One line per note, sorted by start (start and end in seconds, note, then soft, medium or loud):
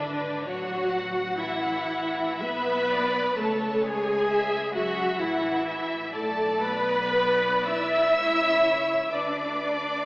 0.00 0.45 G#1 medium
0.00 0.47 D3 medium
0.00 0.47 D4 medium
0.00 0.46 B4 medium
0.00 0.48 D5 medium
0.45 2.40 A1 medium
0.45 1.36 F#3 medium
0.45 1.37 F#4 loud
0.45 0.91 C#5 medium
0.49 1.38 F#5 medium
0.91 2.39 F#5 medium
1.38 2.40 E3 medium
1.38 2.40 E4 medium
1.38 2.40 E5 medium
2.39 3.37 B1 medium
2.39 3.37 B3 medium
2.39 3.37 B4 loud
2.39 2.89 E5 medium
2.39 3.36 B5 medium
2.89 3.36 D5 medium
3.37 5.16 C#2 medium
3.37 3.83 A3 medium
3.37 3.84 A4 medium
3.37 4.27 C#5 medium
3.37 3.83 A5 medium
3.82 4.74 G#3 medium
3.82 4.74 G#4 loud
3.82 4.73 G#5 medium
4.29 4.73 E5 medium
4.73 5.20 F#3 medium
4.73 5.19 F#4 loud
4.73 5.19 E5 medium
4.73 5.18 F#5 medium
5.20 6.15 A1 medium
5.20 6.14 E3 medium
5.20 6.14 E4 medium
5.20 6.15 E5 medium
5.20 5.67 F#5 medium
5.68 6.14 E5 medium
6.14 8.13 B1 medium
6.14 6.62 A3 medium
6.14 6.62 A4 medium
6.14 7.13 D5 medium
6.14 6.61 A5 medium
6.63 7.67 B3 medium
6.63 7.68 B4 loud
6.63 7.67 B5 medium
7.14 8.14 D5 medium
7.66 9.11 E4 medium
7.66 9.11 E5 loud
7.66 9.10 E6 loud
8.17 9.09 C#2 medium
8.17 9.09 C#5 medium
9.11 10.05 D2 medium
9.11 10.05 D4 medium
9.11 10.05 B4 medium
9.11 10.05 D5 medium
9.11 10.05 D6 medium